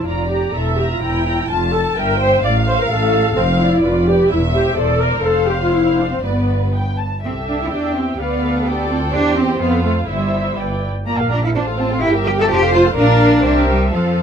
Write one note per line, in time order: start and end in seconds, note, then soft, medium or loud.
0.05 0.49 F1 medium
0.05 0.48 F2 medium
0.05 0.30 F4 medium
0.05 0.53 D5 medium
0.05 0.30 A#5 soft
0.29 0.53 G4 medium
0.29 0.54 A#5 soft
0.53 0.96 E1 medium
0.53 0.96 E2 medium
0.53 0.77 A4 medium
0.53 1.02 E5 medium
0.77 0.90 G4 medium
0.77 1.24 A#5 soft
0.90 1.02 F4 medium
1.01 1.44 E1 medium
1.01 1.44 E2 medium
1.01 1.50 E4 medium
1.01 1.50 G5 medium
1.26 1.49 A#5 soft
1.50 1.92 F1 medium
1.50 1.92 F2 medium
1.50 1.73 F4 medium
1.50 1.73 A5 medium
1.50 1.98 A5 medium
1.74 1.98 A4 medium
1.74 1.97 A5 soft
1.98 2.39 G1 medium
1.98 2.39 G2 medium
1.98 2.21 A#4 medium
1.98 2.21 E5 soft
1.98 2.45 G5 medium
2.22 2.44 C5 medium
2.22 2.45 E5 soft
2.43 2.85 A1 medium
2.43 2.86 A2 medium
2.43 2.52 D5 medium
2.43 3.34 F5 medium
2.43 2.68 F5 medium
2.67 2.79 C5 medium
2.67 3.12 F5 medium
2.80 2.91 A#4 medium
2.91 3.32 A1 medium
2.91 3.32 A2 medium
2.91 3.36 A4 medium
3.14 3.37 F5 medium
3.36 3.79 F1 medium
3.36 3.78 F2 medium
3.36 3.60 C4 medium
3.36 3.83 F5 medium
3.60 3.84 E4 medium
3.60 3.84 D5 medium
3.82 4.25 F1 medium
3.82 4.25 F2 medium
3.82 4.07 F4 medium
3.82 4.06 B4 soft
3.82 4.29 D5 medium
4.07 4.31 G4 medium
4.07 4.30 B4 medium
4.29 4.71 E1 medium
4.29 4.72 E2 medium
4.29 4.39 E4 medium
4.29 4.77 E5 medium
4.53 4.77 G4 medium
4.53 4.75 C5 medium
4.76 5.19 E1 medium
4.76 5.19 E2 medium
4.76 5.00 A4 medium
4.76 5.00 C5 soft
4.76 5.24 D5 medium
5.01 5.24 A#4 medium
5.01 5.25 C5 medium
5.23 6.19 F1 medium
5.23 6.19 F2 medium
5.23 5.48 A4 medium
5.23 6.21 C5 medium
5.23 6.19 F5 medium
5.48 5.61 G4 medium
5.62 5.73 F4 medium
5.72 5.97 E4 medium
5.98 6.11 D4 medium
6.12 6.17 C4 medium
6.22 7.04 G1 medium
6.22 7.04 G2 medium
6.22 6.74 B3 medium
6.22 6.99 B4 medium
6.22 6.69 D5 medium
6.75 6.98 G5 soft
6.98 7.24 A5 medium
7.23 7.70 C2 soft
7.23 7.32 C4 medium
7.23 8.15 G4 medium
7.23 7.70 A4 soft
7.23 7.69 E5 soft
7.23 8.16 E5 soft
7.48 7.60 D4 medium
7.62 7.67 E4 medium
7.72 8.20 E2 soft
7.72 7.96 D4 medium
7.72 8.20 G4 soft
7.72 8.20 G5 soft
7.96 8.20 C4 medium
8.19 9.12 D2 medium
8.19 8.89 B3 medium
8.19 8.66 B4 medium
8.19 8.44 B4 soft
8.19 8.65 D5 soft
8.19 8.66 F5 soft
8.43 8.67 A4 medium
8.66 8.90 G4 medium
8.66 9.13 A4 medium
8.66 9.13 D5 medium
8.66 9.60 G5 soft
8.89 8.97 C4 medium
8.89 9.13 F4 medium
9.13 9.61 E2 medium
9.13 9.37 D4 medium
9.13 9.60 G4 medium
9.13 9.62 G4 medium
9.13 10.07 C5 medium
9.37 9.61 C4 medium
9.60 10.08 F2 medium
9.60 9.84 B3 medium
9.60 10.09 F4 medium
9.60 10.09 A4 medium
9.60 10.09 F5 soft
9.84 9.92 A3 medium
10.08 10.57 G1 medium
10.08 10.57 G3 medium
10.08 10.83 E4 medium
10.08 10.57 C5 soft
10.08 10.57 E5 medium
10.58 10.86 G1 soft
10.58 10.87 B4 soft
10.58 10.87 D5 soft
10.58 10.87 G5 soft
11.06 11.52 A#1 medium
11.06 11.29 A#3 medium
11.06 11.18 F4 soft
11.06 11.18 D5 soft
11.06 11.18 A#5 medium
11.19 11.31 A#4 soft
11.19 11.31 F5 soft
11.30 11.43 D4 medium
11.30 11.44 F4 soft
11.30 11.44 D5 soft
11.30 11.43 A#5 soft
11.43 11.49 E4 medium
11.43 11.55 A#4 soft
11.43 11.55 F5 soft
11.55 12.02 A1 medium
11.55 11.63 D4 medium
11.55 11.66 F4 soft
11.55 11.99 F4 medium
11.55 11.66 C5 soft
11.55 11.66 A5 soft
11.67 11.79 A4 soft
11.67 11.79 F5 soft
11.79 12.02 C4 medium
11.79 11.90 F4 medium
11.79 11.91 C5 medium
11.79 11.91 A5 soft
11.91 12.03 A4 soft
11.91 12.03 F5 soft
12.02 12.50 G1 medium
12.02 12.10 E4 medium
12.02 12.13 G4 medium
12.02 12.50 G4 medium
12.02 12.13 A#4 medium
12.02 12.14 G5 medium
12.14 12.25 G4 soft
12.14 12.24 A#4 soft
12.14 12.26 E5 medium
12.26 12.30 G4 medium
12.26 12.38 G4 medium
12.26 12.38 A#4 medium
12.26 12.38 G5 medium
12.39 12.50 G4 medium
12.39 12.43 A4 loud
12.39 12.50 A#4 medium
12.39 12.50 E5 medium
12.49 12.96 F1 medium
12.49 12.60 F4 medium
12.49 12.73 G4 loud
12.49 12.96 C5 medium
12.49 12.61 C5 medium
12.49 12.61 A5 medium
12.62 12.73 A4 medium
12.62 12.73 F5 medium
12.73 12.81 F4 loud
12.73 12.85 F4 medium
12.73 12.85 C5 medium
12.73 12.84 A5 medium
12.85 12.97 A4 medium
12.85 12.95 F5 medium
12.96 13.40 A#1 medium
12.96 13.66 D4 loud
12.96 13.40 A#4 medium
12.96 13.42 A#4 medium
12.96 13.40 D5 medium
12.96 13.40 F5 medium
13.43 13.92 C2 medium
13.43 13.92 G4 medium
13.43 13.91 A#4 medium
13.43 13.92 C5 medium
13.43 13.92 E5 medium
13.68 13.92 G3 medium
13.91 14.22 F2 medium
13.91 14.22 F3 medium
13.91 14.22 A4 soft
13.91 14.22 A4 medium
13.91 14.22 C5 soft
13.91 14.22 F5 medium